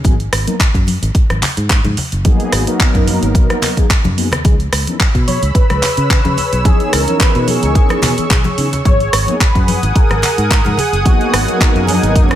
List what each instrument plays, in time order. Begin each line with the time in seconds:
0.04 fingered electric bass G#1, analog polysynth F#3 A#3 B3 D#4 G#4, kick, closed hi-hat, high conga
0.20 closed hi-hat
0.32 fingered electric bass G#1, cross-stick, open hi-hat
0.47 analog polysynth F#3 A#3 B3 D#4 A#4, closed hi-hat, high conga
0.60 kick, clap, closed hi-hat
0.74 fingered electric bass F#2, kick, closed hi-hat
0.87 open hi-hat, high conga
1.02 fingered electric bass G#1, closed hi-hat
1.15 kick, closed hi-hat
1.30 fingered electric bass G#1, cross-stick, closed hi-hat, high conga
1.42 clap, open hi-hat, low conga
1.57 fingered electric bass G#2, closed hi-hat
1.70 kick, clap, closed hi-hat
1.84 fingered electric bass G#2, closed hi-hat, high conga, low conga
1.97 muted fingered electric bass stroke, open hi-hat, low conga
2.12 fingered electric bass F#1, closed hi-hat
2.25 analog polysynth F#3 A#3 B3 D#4 G#4, kick, closed hi-hat, high conga
2.40 closed hi-hat
2.52 fingered electric bass G#1, cross-stick, open hi-hat
2.66 analog polysynth F#3 A#3 B3 D#4 A#4, closed hi-hat, high conga
2.80 kick, clap, closed hi-hat
2.95 fingered electric bass F#2, kick, closed hi-hat
3.08 open hi-hat, high conga
3.22 fingered electric bass G#1, closed hi-hat
3.35 fingered electric bass B1, kick, closed hi-hat
3.50 cross-stick, closed hi-hat, high conga
3.62 clap, open hi-hat, low conga
3.77 analog polysynth F#3 A#3 B3 D#4 G#4, kick, closed hi-hat
3.90 kick, clap, closed hi-hat
4.04 fingered electric bass F#2, closed hi-hat, high conga, low conga
4.17 analog polysynth F#3 A#3 B3 D#4 G#4, open hi-hat
4.32 fingered electric bass D#2, cross-stick, closed hi-hat, low conga
4.44 fingered electric bass C#2, analog polysynth E3 B3 C#4 D#4 G#4, analog synth pad G#4 C#5 B5 E6, kick, closed hi-hat, high conga
4.60 closed hi-hat
4.72 fingered electric bass C#2, cross-stick, open hi-hat
4.87 analog polysynth E3 B3 C#4 D#4 A#4, closed hi-hat, high conga
5.00 kick, clap, closed hi-hat
5.15 fingered electric bass B2, kick, closed hi-hat
5.27 analog synth lead C#5, open hi-hat, high conga
5.42 fingered electric bass C#2, closed hi-hat
5.54 analog synth lead B4, kick, closed hi-hat
5.70 fingered electric bass C#2, cross-stick, closed hi-hat, high conga
5.83 clap, open hi-hat, low conga
5.97 fingered electric bass C#3, closed hi-hat
6.10 kick, clap, closed hi-hat
6.25 fingered electric bass C#3, closed hi-hat, high conga, low conga
6.37 muted fingered electric bass stroke, open hi-hat, low conga
6.53 fingered electric bass B1, closed hi-hat
6.65 analog polysynth E3 B3 C#4 D#4 G#4, analog synth lead G#4, analog synth pad C#6, kick, closed hi-hat, high conga
6.80 closed hi-hat
6.93 fingered electric bass C#2, analog synth lead A#4, cross-stick, open hi-hat
7.06 analog polysynth E3 B3 C#4 D#4 A#4, closed hi-hat, high conga
7.20 analog synth lead B4, kick, clap, closed hi-hat
7.35 fingered electric bass B2, closed hi-hat
7.47 analog synth lead G#4, open hi-hat, high conga
7.63 fingered electric bass C#2, closed hi-hat
7.75 kick, closed hi-hat
7.89 cross-stick, closed hi-hat, high conga
8.02 fingered electric bass B2, clap, open hi-hat, low conga
8.17 analog polysynth E3 B3 C#4 D#4 G#4, muted fingered electric bass stroke, closed hi-hat
8.30 fingered electric bass B1, kick, clap, closed hi-hat
8.44 closed hi-hat, high conga, low conga
8.58 fingered electric bass C#3, analog polysynth E3 B3 C#4 D#4 G#4, open hi-hat
8.73 closed hi-hat, low conga
8.85 fingered electric bass G#1, analog polysynth F#3 A#3 B3 D#4 G#4, analog synth lead C#5, analog synth pad F#5 G#5 D#6, kick, closed hi-hat, high conga
9.00 closed hi-hat
9.13 fingered electric bass G#1, cross-stick, open hi-hat
9.27 analog polysynth F#3 A#3 B3 D#4 A#4, closed hi-hat, high conga
9.40 analog synth lead B4, kick, clap, closed hi-hat
9.55 fingered electric bass F#2, kick, closed hi-hat
9.68 open hi-hat, high conga
9.83 fingered electric bass G#1, closed hi-hat
9.90 analog synth lead B4
9.96 analog synth lead A#4, kick, closed hi-hat
10.10 fingered electric bass G#1, cross-stick, closed hi-hat, high conga
10.22 clap, open hi-hat, low conga
10.38 fingered electric bass G#2, closed hi-hat
10.51 kick, clap, closed hi-hat
10.65 fingered electric bass G#2, closed hi-hat, high conga, low conga
10.77 analog synth lead G#4, muted fingered electric bass stroke, open hi-hat, low conga
10.92 fingered electric bass F#1, closed hi-hat
11.05 analog polysynth F#3 A#3 B3 D#4 G#4, analog synth lead F#4, kick, closed hi-hat, high conga
11.21 closed hi-hat
11.33 fingered electric bass G#1, cross-stick, open hi-hat
11.46 analog polysynth F#3 A#3 B3 D#4 A#4, closed hi-hat, high conga
11.61 kick, clap, closed hi-hat
11.75 fingered electric bass F#2, closed hi-hat
11.87 analog synth lead D#4, open hi-hat, high conga
12.03 fingered electric bass G#1, closed hi-hat
12.16 fingered electric bass F#2, kick, closed hi-hat
12.29 cross-stick, closed hi-hat, high conga